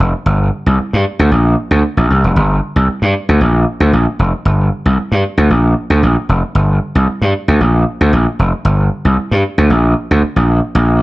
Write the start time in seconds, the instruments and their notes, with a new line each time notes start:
0.00 slap bass F1
0.26 slap bass G1
0.66 slap bass C2
0.80 muted slap bass stroke
0.93 slap bass G2
1.19 slap bass D2
1.31 slap bass A#1
1.71 slap bass D2
1.97 slap bass A#1
2.10 slap bass C2
2.24 slap bass F1
2.36 slap bass G1
2.76 slap bass C2
2.88 muted slap bass stroke
3.02 slap bass G2
3.29 slap bass D2
3.41 slap bass A#1
3.80 slap bass D2
3.93 slap bass A#1
4.19 slap bass F1
4.45 slap bass G1
4.86 slap bass C2
4.99 muted slap bass stroke
5.12 slap bass G2
5.38 slap bass D2
5.50 slap bass A#1
5.90 slap bass D2
6.03 slap bass A#1
6.29 slap bass F1
6.55 slap bass G1
6.95 slap bass C2
7.07 muted slap bass stroke
7.22 slap bass G2
7.48 slap bass D2
7.61 slap bass A#1
8.01 slap bass D2
8.13 slap bass A#1
8.39 slap bass F1
8.65 slap bass G1
9.05 slap bass C2
9.18 muted slap bass stroke
9.31 slap bass G2
9.58 slap bass D2
9.70 slap bass A#1
10.11 slap bass D2
10.23 muted slap bass stroke
10.36 slap bass A#1
10.75 slap bass A#1